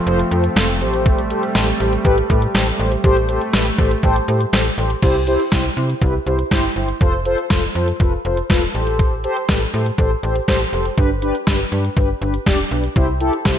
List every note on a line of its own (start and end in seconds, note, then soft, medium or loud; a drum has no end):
0.00 0.79 F3 medium
0.00 3.00 A3 medium
0.00 4.99 C4 medium
0.07 0.24 F1 loud
0.07 0.19 F4 loud
0.07 0.19 A4 loud
0.07 0.19 C5 loud
0.07 closed hi-hat medium
0.19 closed hi-hat medium
0.31 0.49 F2 loud
0.31 0.44 F4 medium
0.31 0.44 A4 medium
0.31 0.44 C5 loud
0.31 closed hi-hat medium
0.44 closed hi-hat medium
0.56 0.83 F1 loud
0.56 0.69 F4 medium
0.56 0.69 A4 medium
0.56 0.69 C5 medium
0.56 snare loud
0.56 closed hi-hat medium
0.68 closed hi-hat soft
0.81 1.33 A1 medium
0.81 4.99 G3 medium
0.81 1.21 G4 medium
0.81 1.21 A4 medium
0.81 1.21 C5 loud
0.81 closed hi-hat medium
0.94 closed hi-hat medium
1.06 kick loud
1.06 closed hi-hat medium
1.18 closed hi-hat soft
1.30 1.43 G4 medium
1.30 1.43 A4 medium
1.30 1.43 C5 loud
1.30 closed hi-hat medium
1.43 closed hi-hat soft
1.55 1.73 A1 loud
1.55 1.68 G4 medium
1.55 1.68 A4 medium
1.55 1.68 C5 loud
1.55 snare loud
1.55 closed hi-hat medium
1.68 closed hi-hat medium
1.80 1.98 A1 medium
1.80 1.93 G4 medium
1.80 1.93 A4 medium
1.80 1.93 C5 loud
1.80 closed hi-hat medium
1.93 closed hi-hat medium
2.05 2.22 A1 loud
2.05 2.18 G4 loud
2.05 2.18 A4 loud
2.05 2.18 B4 loud
2.05 kick medium
2.05 closed hi-hat medium
2.18 closed hi-hat medium
2.30 2.47 A2 loud
2.30 2.42 G4 medium
2.30 2.42 A4 medium
2.30 2.42 B4 medium
2.30 kick medium
2.30 closed hi-hat medium
2.42 closed hi-hat medium
2.54 2.72 A1 loud
2.54 2.67 G4 medium
2.54 2.67 A4 medium
2.54 2.67 C5 medium
2.54 snare loud
2.54 closed hi-hat medium
2.67 closed hi-hat soft
2.79 2.97 A1 loud
2.79 2.92 G4 medium
2.79 2.92 A4 medium
2.79 2.92 C5 medium
2.79 closed hi-hat medium
2.92 closed hi-hat medium
3.04 3.39 A1 loud
3.04 5.01 A3 medium
3.04 3.17 G4 loud
3.04 3.17 A4 loud
3.04 3.17 C5 loud
3.04 kick loud
3.04 closed hi-hat medium
3.17 closed hi-hat medium
3.29 3.42 G4 medium
3.29 3.42 A4 medium
3.29 3.42 C5 loud
3.29 closed hi-hat medium
3.41 closed hi-hat soft
3.54 3.71 A1 loud
3.54 3.66 G4 medium
3.54 3.66 A4 medium
3.54 3.66 B4 loud
3.54 snare loud
3.54 closed hi-hat medium
3.66 closed hi-hat medium
3.78 3.96 A1 loud
3.78 3.91 G4 medium
3.78 3.91 A4 medium
3.78 3.91 C5 loud
3.78 kick medium
3.78 closed hi-hat medium
3.91 closed hi-hat medium
4.03 4.21 A1 loud
4.03 4.16 G4 loud
4.03 4.16 A4 loud
4.03 4.16 C5 loud
4.03 kick medium
4.03 closed hi-hat medium
4.16 closed hi-hat medium
4.28 4.46 A2 loud
4.28 4.41 G4 medium
4.28 4.41 A4 medium
4.28 4.41 C5 medium
4.28 closed hi-hat medium
4.41 closed hi-hat medium
4.53 4.70 A1 loud
4.53 4.66 G4 medium
4.53 4.66 A4 medium
4.53 4.66 C5 medium
4.53 snare loud
4.53 closed hi-hat medium
4.65 closed hi-hat soft
4.78 4.95 A1 loud
4.78 4.90 G4 medium
4.78 4.90 A4 medium
4.78 4.90 C5 medium
4.78 open hi-hat medium
4.90 closed hi-hat medium
5.03 5.37 C2 loud
5.03 5.15 E4 loud
5.03 5.15 G4 loud
5.03 5.15 C5 loud
5.03 kick loud
5.03 closed hi-hat medium
5.03 crash medium
5.27 5.40 E4 loud
5.27 5.40 G4 loud
5.27 5.40 C5 loud
5.27 closed hi-hat medium
5.40 closed hi-hat soft
5.52 5.70 C2 loud
5.52 5.65 E4 medium
5.52 5.65 G4 medium
5.52 5.65 C5 medium
5.52 kick loud
5.52 snare loud
5.52 closed hi-hat medium
5.77 5.94 C3 loud
5.77 5.89 E4 medium
5.77 5.89 G4 medium
5.77 5.89 C5 medium
5.77 closed hi-hat medium
5.89 closed hi-hat medium
6.02 6.19 C2 loud
6.02 6.14 E4 medium
6.02 6.14 G4 medium
6.02 6.14 B4 loud
6.02 kick loud
6.02 closed hi-hat medium
6.26 6.44 C2 loud
6.26 6.39 E4 medium
6.26 6.39 G4 medium
6.26 6.39 C5 medium
6.26 closed hi-hat medium
6.39 closed hi-hat medium
6.51 6.69 G1 loud
6.51 6.64 E4 loud
6.51 6.64 G4 loud
6.51 6.64 C5 loud
6.51 kick loud
6.51 snare loud
6.51 closed hi-hat medium
6.76 6.93 G1 medium
6.76 6.89 E4 medium
6.76 6.89 G4 medium
6.76 6.89 C5 medium
6.76 closed hi-hat medium
6.88 closed hi-hat medium
7.01 7.36 F1 loud
7.01 7.13 F4 loud
7.01 7.13 A4 loud
7.01 7.13 C5 loud
7.01 kick loud
7.01 closed hi-hat medium
7.25 7.38 F4 loud
7.25 7.38 A4 loud
7.25 7.38 C5 loud
7.25 closed hi-hat medium
7.38 closed hi-hat soft
7.50 7.68 F1 loud
7.50 7.63 F4 medium
7.50 7.63 A4 medium
7.50 7.63 C5 loud
7.50 kick loud
7.50 snare loud
7.50 closed hi-hat medium
7.75 7.93 F2 medium
7.75 7.88 F4 medium
7.75 7.88 A4 medium
7.75 7.88 C5 loud
7.75 closed hi-hat medium
7.88 closed hi-hat medium
8.00 8.17 F1 loud
8.00 8.13 F4 medium
8.00 8.13 A4 medium
8.00 8.13 B4 loud
8.00 kick loud
8.00 closed hi-hat medium
8.25 8.42 F1 loud
8.25 8.38 F4 medium
8.25 8.38 A4 medium
8.25 8.38 C5 loud
8.25 closed hi-hat medium
8.37 closed hi-hat medium
8.50 8.67 E1 medium
8.50 8.62 F4 loud
8.50 8.62 A4 loud
8.50 8.62 B4 loud
8.50 kick loud
8.50 snare loud
8.50 closed hi-hat medium
8.75 9.27 A1 loud
8.75 9.14 G4 medium
8.75 9.14 A4 medium
8.75 9.14 C5 medium
8.75 closed hi-hat medium
8.87 closed hi-hat medium
8.99 kick loud
8.99 closed hi-hat medium
9.24 9.37 G4 loud
9.24 9.37 A4 loud
9.24 9.37 C5 loud
9.24 closed hi-hat medium
9.37 closed hi-hat soft
9.49 9.66 A1 loud
9.49 9.61 G4 medium
9.49 9.61 A4 medium
9.49 9.61 B4 loud
9.49 kick loud
9.49 snare loud
9.49 closed hi-hat medium
9.74 9.91 A2 loud
9.74 9.86 G4 medium
9.74 9.86 A4 medium
9.74 9.86 C5 loud
9.74 closed hi-hat medium
9.86 closed hi-hat medium
9.98 10.16 A1 loud
9.98 10.11 G4 medium
9.98 10.11 A4 medium
9.98 10.11 C5 loud
9.98 kick loud
9.98 closed hi-hat medium
10.23 10.41 A1 loud
10.23 10.36 G4 medium
10.23 10.36 A4 medium
10.23 10.36 C5 loud
10.23 closed hi-hat medium
10.36 closed hi-hat medium
10.48 10.65 A1 loud
10.48 10.60 G4 loud
10.48 10.60 A4 loud
10.48 10.60 C5 loud
10.48 kick loud
10.48 snare loud
10.48 closed hi-hat medium
10.73 10.90 F1 medium
10.73 10.85 G4 medium
10.73 10.85 A4 medium
10.73 10.85 C5 medium
10.73 closed hi-hat medium
10.85 closed hi-hat medium
10.97 11.32 G1 loud
10.97 11.10 D4 loud
10.97 11.10 G4 loud
10.97 11.10 B4 loud
10.97 kick loud
10.97 closed hi-hat medium
11.22 11.35 D4 loud
11.22 11.35 G4 loud
11.22 11.35 B4 loud
11.22 closed hi-hat medium
11.35 closed hi-hat soft
11.47 11.65 G1 loud
11.47 11.60 D4 medium
11.47 11.60 G4 medium
11.47 11.60 B4 medium
11.47 kick loud
11.47 snare loud
11.47 closed hi-hat medium
11.72 11.89 G2 medium
11.72 11.84 D4 medium
11.72 11.84 G4 medium
11.72 11.84 B4 medium
11.72 closed hi-hat medium
11.84 closed hi-hat medium
11.97 12.14 G1 loud
11.97 12.09 D4 medium
11.97 12.09 G4 medium
11.97 12.09 B4 loud
11.97 kick loud
11.97 closed hi-hat medium
12.21 12.39 G1 loud
12.21 12.34 D4 medium
12.21 12.34 G4 medium
12.21 12.34 B4 loud
12.21 closed hi-hat medium
12.34 closed hi-hat medium
12.46 12.64 E1 medium
12.46 12.59 D4 loud
12.46 12.59 G4 loud
12.46 12.59 D5 loud
12.46 kick loud
12.46 snare loud
12.46 closed hi-hat medium
12.71 12.89 B1 medium
12.71 12.84 D4 medium
12.71 12.84 G4 medium
12.71 12.84 B4 medium
12.71 closed hi-hat medium
12.84 closed hi-hat medium
12.96 13.31 C2 loud
12.96 13.08 E4 loud
12.96 13.08 G4 loud
12.96 13.08 C5 loud
12.96 kick loud
12.96 closed hi-hat medium
13.20 13.33 E4 loud
13.20 13.33 G4 loud
13.20 13.33 A4 loud
13.20 closed hi-hat medium
13.33 closed hi-hat soft
13.45 13.59 C2 loud
13.45 13.58 E4 medium
13.45 13.58 G4 medium
13.45 13.58 C5 medium
13.45 kick loud
13.45 snare loud
13.45 closed hi-hat medium